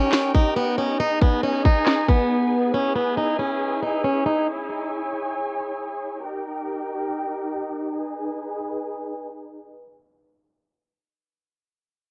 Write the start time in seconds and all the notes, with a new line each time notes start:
Already playing: C#4 D#4 G4 A#4 G5
0.12 snare, clap
0.35 D#4, kick
0.56 B3
0.78 C#4
1.00 D#4 G#4 B4 G#5
1.21 B3, kick
1.43 C#4
1.65 D#4, kick
1.86 snare, clap
2.09 B3, kick
2.74 C#4 E4 G#5
2.95 B3
3.17 D#4
3.39 C#4
3.82 D#4
4.04 C#4
4.26 D#4
4.48 C#5 G#5
6.22 D#4 G4 A#4 G5
7.95 G#4 B4 G#5